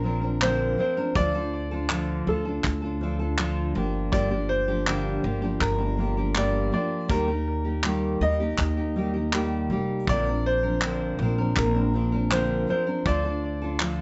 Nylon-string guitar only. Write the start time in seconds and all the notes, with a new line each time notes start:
0.03 F3 C4 D4 A#4
0.21 F3 C4 D4 A#4
0.41 A#2 D3 F3 C4 D4 A#4
0.78 F3 C4 D4 A#4
0.97 F3 C4 D4 A#4
1.15 D3 F3 D4 F4 A4
1.35 D4 F4 A4
1.71 D4 F4 A4
1.90 D3 F3 D4 F4 A4
2.27 F3 D4 F4 A4
2.45 D4 F4 A4
2.82 D4 F4 A4
3.01 F3 D4 F4 A4
3.19 D4 F4 A4
3.37 D3 F3 D4 F4 A4
3.75 F3 A#3 D4 G4
4.12 G2 D3 F3 A#3 D4 G4
4.31 F3 A#3 D4 G4
4.68 F3 A#3 D4 G4
4.86 G2 D3 F3 A#3 D4 G4
5.23 F3 A#3 D4 G4
5.42 F3 A#3 D4 G4
5.78 F3 A#3 D4 G4
5.97 F3 A#3 D4 G4
6.17 F3 A#3 D4 G4
6.35 G2 D3 F3 A#3 D4 G4
6.72 F3 A#3 D4 G4
7.08 D#3 G3 A#3 D#4 G4
7.28 A#3 D#4 G4
7.65 A#3 D#4 G4
7.84 D#3 G3 A#3 D#4 G4
8.21 G3 A#3 D#4 G4
8.40 A#3 D#4 G4
8.77 A#3 D#4 G4
8.96 G3 A#3 D#4 G4
9.14 A#3 D#4 G4
9.32 D#3 G3 A#3 D#4 G4
9.70 G3 A#3 D#4 G4
10.08 A#2 D3 F3 C4 D4 A#4
10.26 F3 C4 D4 A#4
10.63 F3 C4 D4 A#4
10.82 A#2 D3 F3 C4 D4 A#4
11.20 F3 C4 D4 A#4
11.38 F3 C4 D4 A#4
11.74 F3 C4 D4 A#4
11.93 F3 C4 D4 A#4
12.12 F3 C4 D4 A#4
12.31 A#2 D3 F3 C4 D4 A#4
12.67 F3 C4 D4 A#4
12.87 F3 C4 D4 A#4
13.06 D3 F3 D4 F4 A4
13.25 D4 F4 A4
13.62 D4 F4 A4
13.80 D3 F3 D4 F4 A4